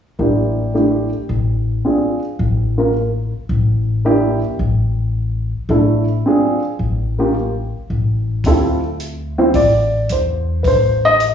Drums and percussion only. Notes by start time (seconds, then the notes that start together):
8.44 kick, open hi-hat
9.00 closed hi-hat
9.54 kick, open hi-hat
10.09 closed hi-hat
10.64 kick, open hi-hat
11.20 closed hi-hat